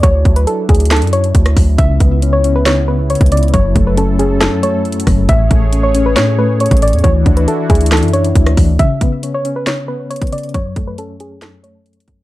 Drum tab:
HH |x-----------x-----x-----x-----------x--x--x--x--x--x--x--x--x-----x-----x-----x-----o-----------|x-----------x-----------x-----------x-----------x-----------------------x--x--x--x--x--x--x--x--|x-----------x-----------x-----------x-----------x-----------x-----------x---x---x---o-----------|x-----------x-----------x-----------x-----------x-----------------------x--x--x--x--x--x--x--x--|
CP |------------------------------------------------x-----------------------------------------------|------------------------------------------------x-----------------------------------------------|------------------------------------------------x-----------------------------------------------|------------------------------------------------x-----------------------------------------------|
SD |------------------------------------------------o-----------------------------r-----------------|------------------------------------------------o-----------------------------------------------|------------------------------------------------o-----------------------------------r-----------|------------------------------------------------o-----------------------------------------------|
BD |o-----------o-----------------------o-----------------------------------o-----------o-----------|o-----------o-----------------------------------------------------------------o-----------------|o-----------o-----------------------------------------------------------------------o-----------|o-----------o-----------------------------------------------------------------o-----------------|

HH |x-----------x-----x-----x-----------x--x--x--x--x--x--x--x--x-----x-----x-----x-----o-----------|x-----------x-----------x-----------x-----------x-----------------------x--x--x--x--x--x--x--x--|x-----------x-----------x-----------x-----------x-----------x-----------x---x---x---x-----------|
CP |------------------------------------------------x-----------------------------------------------|------------------------------------------------x-----------------------------------------------|------------------------------------------------x-----------------------------------------------|
SD |------------------------------------------------o-----------------------------r-----------------|------------------------------------------------o-----------------------------------------------|------------------------------------------------o-----------------------------------------------|
BD |o-----------o-----------------------o-----------------------------------o-----------o-----------|o-----------o-----------------------------------------------------------------o-----------------|o-----------o-----------------------------------------------------------------------o-----------|